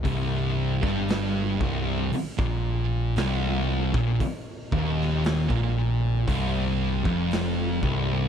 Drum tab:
HH |o---o---o---o---|o---o---o---o---|
SD |---oo-------o---|---oo-------o---|
BD |o--o--o--o-----o|o-o--o--o--o--o-|